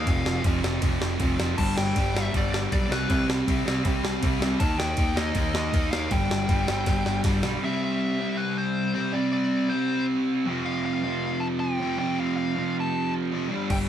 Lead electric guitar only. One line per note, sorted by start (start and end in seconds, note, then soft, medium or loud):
0.00 0.42 F5 loud
1.58 1.77 A5 loud
1.77 2.14 G5 loud
2.16 2.33 E5 loud
2.37 2.52 D5 medium
2.53 2.58 D5 medium
2.73 2.91 D5 medium
2.92 3.26 B4 medium
4.60 4.78 A5 loud
4.78 5.17 G5 loud
5.17 5.91 D#5 medium
5.91 6.11 F5 medium
6.12 7.20 G5 loud
7.64 7.82 E5 loud
7.84 8.41 E5 loud
8.37 8.57 B4 medium
8.58 8.94 C5 medium
8.95 9.14 C5 medium
9.13 9.32 D5 loud
9.33 9.72 D5 medium
9.69 10.05 C5 medium
10.65 10.84 F5 medium
10.86 11.44 F5 medium
11.40 11.46 A5 loud
11.60 11.98 G5 loud
11.99 12.20 G5 medium
12.20 12.35 F5 medium
12.36 12.76 F5 medium
12.80 13.13 A5 medium
13.71 13.76 G5 loud